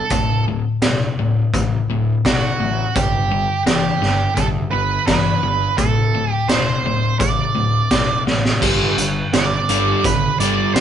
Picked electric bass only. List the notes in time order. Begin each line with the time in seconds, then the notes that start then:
0.11 D1
0.82 D1
1.18 D1
1.53 A1
1.88 D1
2.25 D1
2.60 A1
2.96 G1
3.66 G1
4.01 G1
4.37 D2
4.73 G1
5.08 G1
5.43 G1
5.79 D1
6.49 D1
6.84 D1
7.20 A1
7.56 D1
7.91 D1
8.26 A1
8.62 G1
8.97 G1
9.33 G1
9.68 G1
10.04 G1
10.39 G1
10.74 C2